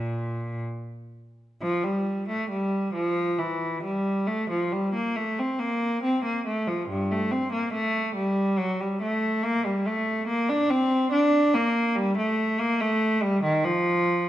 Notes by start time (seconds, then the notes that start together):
Already playing: A#2
1.61 F3
1.84 G3
2.29 A3
2.50 G3
2.94 F3
3.38 E3
3.83 G3
4.27 A3
4.50 F3
4.72 G3
4.94 A#3
5.16 A3
5.39 C4
5.59 A#3
6.03 C4
6.25 A#3
6.46 A3
6.67 F3
6.88 G2
7.11 A3
7.31 C4
7.52 A#3
7.73 A3
8.15 G3
8.58 F#3
8.80 G3
9.02 A3
9.44 A#3
9.65 G3
9.86 A3
10.28 A#3
10.49 D4
10.70 C4
11.12 D4
11.54 A#3
11.95 G3
12.17 A3
12.60 A#3
12.81 A3
13.22 G3
13.44 D#3
13.64 F3